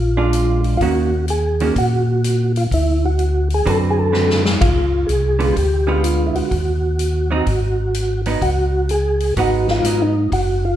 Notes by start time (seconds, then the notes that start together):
Already playing: A#1 F4
0.17 G#3 D4 F4
0.33 closed hi-hat
0.64 open hi-hat
0.77 D#2 F4, kick, open hi-hat
0.82 D#3 A#3 C#4 F#4
1.28 G#4, closed hi-hat
1.60 D#3 A#3 C#4 F#4, open hi-hat
1.76 A#2 F#4, kick, open hi-hat
2.24 closed hi-hat
2.56 F4, open hi-hat
2.71 D2 E4, kick, open hi-hat
3.06 F#4
3.19 closed hi-hat
3.50 open hi-hat
3.54 G#4
3.66 F#2 D3 C4 F#4 A4 B4, kick, open hi-hat
3.91 G#4
3.99 A4
4.12 D3 C4 F#4 B4, snare
4.30 snare
4.45 snare
4.61 C#2 F4, kick, ride
5.07 C2 G#4, closed hi-hat
5.39 D3 G#3 B3 F4, open hi-hat
5.53 D2 G4, kick, open hi-hat
5.87 D3 G#3 B3 F4
6.03 F4, closed hi-hat
6.27 E4
6.35 D2 F#4, open hi-hat
6.51 D#2, kick, open hi-hat
6.99 closed hi-hat
7.31 F#3 C4 D#4
7.46 G#1, kick, open hi-hat
7.94 closed hi-hat
8.26 F#3 B3 D#4, open hi-hat
8.41 C#2 F#4, kick, open hi-hat
8.89 G#4, closed hi-hat
9.20 open hi-hat
9.36 G#1 F#3 B3 D#4 F#4, kick, open hi-hat
9.68 F4, snare
9.84 G#2 F#3 B3 D#4, closed hi-hat
10.02 D#4
10.32 F#1 F#4, kick, open hi-hat
10.65 F4